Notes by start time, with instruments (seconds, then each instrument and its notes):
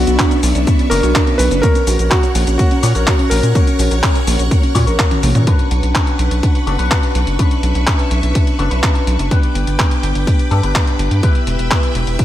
Already playing: string machine B3 D4 E5 C#6, clean electric guitar D4 F#4 B4 C#5, electric grand piano F#4
0.07 analog synth bass B1, synth arpeggio sound F#4, closed hi-hat, cabasa
0.19 synth arpeggio sound D4, kick, clap, closed hi-hat, cabasa
0.31 synth arpeggio sound C#4, closed hi-hat, cabasa
0.43 analog synth bass B1, synth arpeggio sound B3, open hi-hat, cabasa
0.55 analog synth bass B1, synth arpeggio sound C#4, closed hi-hat, cabasa
0.67 synth arpeggio sound B3, kick, closed hi-hat, cabasa
0.79 synth arpeggio sound C#4, closed hi-hat
0.90 analog synth bass F#1, synth arpeggio sound D4, clean electric guitar D4 F#4 B4 C#5, electric grand piano A#4, open hi-hat, cabasa
1.03 analog synth bass B1, clean electric guitar B3 D4 F#4 C#5, synth arpeggio sound F#4, closed hi-hat, cabasa
1.15 synth arpeggio sound D4, kick, clap, closed hi-hat, cabasa
1.27 synth arpeggio sound C#4, closed hi-hat
1.38 analog synth bass B1, synth arpeggio sound B3, electric grand piano B4, open hi-hat, cabasa
1.51 analog synth bass F#1, synth arpeggio sound C#4, closed hi-hat, cabasa
1.62 synth arpeggio sound A#3, clean electric guitar C#4 F#4 A#4 C#5, electric grand piano A#4, string machine A#4 C#5 F#5 C#6, kick, closed hi-hat, cabasa
1.75 synth arpeggio sound C#4, closed hi-hat, cabasa
1.87 analog synth bass A#1, synth arpeggio sound F#4, open hi-hat, cabasa
1.99 analog synth bass A#1, synth arpeggio sound A#4, closed hi-hat, cabasa
2.10 electric grand piano F#4, synth arpeggio sound F#4, kick, clap, closed hi-hat, cabasa
2.23 synth arpeggio sound C#4, closed hi-hat, cabasa
2.35 analog synth bass A#1, synth arpeggio sound A#3, open hi-hat, cabasa
2.47 analog synth bass A#1, synth arpeggio sound C#4, closed hi-hat, cabasa
2.58 synth arpeggio sound A#3, electric grand piano F#4, kick, closed hi-hat, cabasa
2.71 synth arpeggio sound C#4, closed hi-hat
2.83 analog synth bass A#2, clean electric guitar C#4 F#4 A#4 C#5, synth arpeggio sound F#4, open hi-hat, cabasa
2.95 analog synth bass A#1, clean electric guitar C#4 F#4 A#4 C#5, synth arpeggio sound A#4, closed hi-hat, cabasa
3.07 synth arpeggio sound F#4, kick, clap, closed hi-hat, cabasa
3.19 synth arpeggio sound C#4, closed hi-hat
3.30 analog synth bass A#1, synth arpeggio sound A#3, electric grand piano A#4, open hi-hat, cabasa
3.43 analog synth bass A#2, synth arpeggio sound C#4, closed hi-hat, cabasa
3.55 synth arpeggio sound A#3, clean electric guitar C#4 F#4 A#4 C#5, kick, closed hi-hat, cabasa
3.67 synth arpeggio sound C#4, closed hi-hat, cabasa
3.79 analog synth bass A#1, synth arpeggio sound F#4, open hi-hat, cabasa
3.91 analog synth bass A#1, synth arpeggio sound A#4, closed hi-hat, cabasa
4.03 synth arpeggio sound F#4, kick, clap, closed hi-hat, cabasa
4.15 synth arpeggio sound C#4, closed hi-hat, cabasa
4.27 analog synth bass A#1, synth arpeggio sound A#3, open hi-hat, cabasa
4.39 analog synth bass A#1, synth arpeggio sound C#4, closed hi-hat, cabasa
4.51 synth arpeggio sound A#3, kick, closed hi-hat, cabasa
4.63 synth arpeggio sound C#4, closed hi-hat
4.75 analog synth bass A#2, clean electric guitar C#4 F#4 A#4 C#5, synth arpeggio sound F#4, kick, open hi-hat, cabasa
4.87 analog synth bass A#1, clean electric guitar C#4 F#4 A#4 C#5, synth arpeggio sound A#4, closed hi-hat, cabasa
4.99 synth arpeggio sound F#4, kick, clap, closed hi-hat, cabasa
5.11 synth arpeggio sound C#4, closed hi-hat, high tom
5.23 analog synth bass A#1, synth arpeggio sound A#3, open hi-hat, mid tom, cabasa
5.35 analog synth bass A#2, synth arpeggio sound C#4, closed hi-hat, mid tom, cabasa
5.47 clean electric guitar C#4 D4 F#4 B4, string machine B4 F#5 C#6, kick, closed hi-hat
5.59 closed hi-hat
5.71 analog synth bass B1, closed hi-hat
5.83 analog synth bass B1, closed hi-hat
5.95 kick, clap, closed hi-hat
6.07 closed hi-hat
6.19 analog synth bass B1, closed hi-hat
6.31 analog synth bass B1, closed hi-hat
6.43 kick, closed hi-hat
6.55 closed hi-hat
6.67 analog synth bass F#1, clean electric guitar C#4 D4 F#4 A4, closed hi-hat
6.79 analog synth bass B1, clean electric guitar C#4 D4 F#4 B4, closed hi-hat
6.91 kick, clap, closed hi-hat
7.03 closed hi-hat
7.15 analog synth bass B1, closed hi-hat
7.27 analog synth bass F#1, closed hi-hat
7.39 clean electric guitar C#4 D4 F#4 B4, string machine E5, kick, closed hi-hat
7.51 closed hi-hat
7.63 analog synth bass B1, closed hi-hat
7.75 analog synth bass B1, closed hi-hat
7.87 kick, clap, closed hi-hat
7.99 closed hi-hat
8.11 analog synth bass B1, closed hi-hat
8.23 analog synth bass B1, closed hi-hat
8.35 kick, closed hi-hat
8.47 closed hi-hat
8.59 analog synth bass F#1, clean electric guitar C#4 D4 F#4 A4, closed hi-hat
8.71 analog synth bass B1, clean electric guitar C#4 D4 F#4 B4, closed hi-hat
8.83 kick, clap, closed hi-hat
8.95 closed hi-hat
9.07 analog synth bass B1, closed hi-hat
9.19 analog synth bass F#1, closed hi-hat
9.31 clean electric guitar B3 D4 G4 B4, string machine B4 G5 D6, kick, closed hi-hat
9.43 closed hi-hat
9.55 analog synth bass G1, closed hi-hat
9.67 analog synth bass G1, closed hi-hat
9.79 kick, clap, closed hi-hat
9.91 closed hi-hat
10.03 analog synth bass G1, closed hi-hat
10.15 analog synth bass G1, closed hi-hat
10.27 kick, closed hi-hat
10.39 closed hi-hat
10.51 analog synth bass G2, clean electric guitar B3 D4 G4 A4, closed hi-hat
10.63 analog synth bass G1, clean electric guitar B3 D4 G4 B4, closed hi-hat
10.75 kick, clap, closed hi-hat
10.87 closed hi-hat
10.99 analog synth bass G1, closed hi-hat
11.11 analog synth bass G2, closed hi-hat
11.23 clean electric guitar B3 E4 G4 B4, string machine E5 G5 E6, kick, closed hi-hat
11.35 closed hi-hat
11.47 analog synth bass E1, closed hi-hat
11.59 analog synth bass E1, closed hi-hat
11.71 kick, clap, closed hi-hat
11.83 closed hi-hat
11.95 analog synth bass E1, closed hi-hat
12.07 analog synth bass E1, closed hi-hat
12.19 kick, closed hi-hat